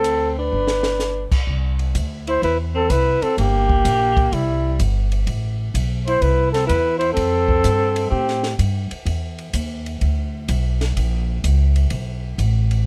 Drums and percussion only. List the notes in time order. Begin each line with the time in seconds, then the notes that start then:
0.04 hi-hat pedal, ride
0.67 snare
0.83 snare
1.00 snare, hi-hat pedal
1.32 kick, crash
1.47 kick
1.79 ride
1.95 kick, hi-hat pedal, ride
2.27 ride
2.42 kick, ride
2.90 kick, hi-hat pedal, ride
3.22 ride
3.38 kick, ride
3.69 kick
3.85 kick, hi-hat pedal, ride
4.17 kick, ride
4.32 kick, ride
4.79 kick, hi-hat pedal, ride
5.12 ride
5.27 kick, ride
5.75 kick, hi-hat pedal, ride
6.07 ride
6.22 kick, ride
6.54 snare, ride
6.69 kick, hi-hat pedal, ride
7.01 ride
7.17 kick, ride
7.48 kick
7.64 kick, hi-hat pedal, ride
7.96 ride
8.11 kick
8.28 snare
8.43 snare
8.59 kick, hi-hat pedal, ride
8.91 ride
9.06 kick, ride
9.38 ride
9.53 kick, hi-hat pedal, ride
9.86 ride
10.01 kick, ride
10.48 kick, hi-hat pedal, ride
10.81 snare, ride
10.97 kick, ride
11.44 kick, hi-hat pedal, ride
11.76 ride
11.90 kick, ride
12.39 kick, hi-hat pedal, ride
12.71 ride